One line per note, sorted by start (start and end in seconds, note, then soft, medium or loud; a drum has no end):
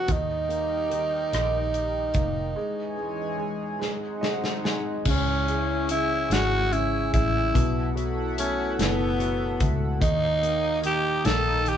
0.00 0.11 B2 soft
0.00 0.10 F#3 soft
0.00 0.13 F#4 medium
0.08 1.28 D#2 medium
0.08 0.89 D#3 medium
0.08 2.54 D#4 medium
0.08 4.24 D#4 medium
0.08 2.54 G4 medium
0.08 2.54 A#4 medium
0.08 2.54 G5 medium
0.08 kick medium
0.08 closed hi-hat medium
0.48 2.10 A#3 soft
0.48 closed hi-hat soft
0.90 2.52 D#3 medium
0.90 closed hi-hat soft
1.33 2.11 A#1 medium
1.33 cross-stick medium
1.33 closed hi-hat medium
1.74 closed hi-hat soft
2.14 2.54 F1 medium
2.14 2.55 A#3 soft
2.14 kick medium
2.14 closed hi-hat soft
2.56 3.79 E3 medium
2.56 2.95 G#3 medium
2.56 3.80 G#3 medium
2.56 5.03 G#4 medium
2.56 3.79 C#5 medium
2.56 3.80 G#5 medium
2.97 3.36 G#3 soft
3.38 3.78 G#3 medium
3.79 4.20 G#3 medium
3.79 5.05 D#4 medium
3.79 5.05 C5 medium
3.79 5.04 F#5 medium
3.79 snare medium
4.21 4.63 G#3 soft
4.21 4.60 D#5 medium
4.21 snare medium
4.44 snare medium
4.64 5.05 G#3 soft
4.64 5.03 G#5 medium
4.64 snare medium
5.04 6.26 C#2 medium
5.04 5.88 C#3 medium
5.04 7.52 E4 medium
5.04 7.51 G#4 medium
5.04 7.52 C#5 medium
5.04 7.52 G#5 medium
5.04 kick loud
5.04 crash medium
5.10 5.87 C#4 medium
5.48 6.28 G#3 soft
5.48 closed hi-hat soft
5.89 6.70 C#3 medium
5.89 6.34 E4 medium
5.89 closed hi-hat medium
6.30 7.09 G#1 medium
6.30 7.10 G#3 medium
6.30 6.74 F#4 loud
6.30 snare loud
6.30 closed hi-hat medium
6.72 7.52 C#3 medium
6.72 7.13 E4 medium
6.72 closed hi-hat medium
7.12 7.52 A1 medium
7.12 7.53 G#3 soft
7.12 7.92 E4 medium
7.12 kick medium
7.12 closed hi-hat medium
7.54 8.75 B1 medium
7.54 8.77 B2 medium
7.54 9.99 E4 medium
7.54 9.99 A4 medium
7.54 9.99 F#5 medium
7.54 9.99 B5 medium
7.54 kick medium
7.54 closed hi-hat medium
7.95 9.18 F#3 soft
7.95 closed hi-hat soft
8.38 9.58 A3 medium
8.38 8.77 C#4 medium
8.38 closed hi-hat medium
8.79 9.57 F#1 medium
8.79 9.98 B2 medium
8.79 9.69 B3 medium
8.79 snare loud
8.79 closed hi-hat medium
9.19 9.99 F#3 medium
9.19 closed hi-hat medium
9.60 9.99 C#2 loud
9.60 10.00 A3 medium
9.60 kick medium
9.60 closed hi-hat medium
10.00 11.21 D#2 medium
10.00 10.80 D#3 medium
10.00 11.77 A#3 medium
10.00 11.77 D#4 medium
10.00 10.80 D#4 loud
10.00 11.77 G5 medium
10.00 11.77 D#6 medium
10.00 kick medium
10.00 closed hi-hat medium
10.42 11.22 A#3 soft
10.42 closed hi-hat soft
10.82 11.63 D#3 medium
10.82 closed hi-hat medium
10.86 11.27 G4 loud
11.24 11.77 A#1 medium
11.24 11.77 A#3 medium
11.24 11.70 A4 loud
11.24 snare loud
11.24 closed hi-hat medium
11.64 11.77 D#3 medium
11.64 closed hi-hat soft
11.69 11.77 G4 medium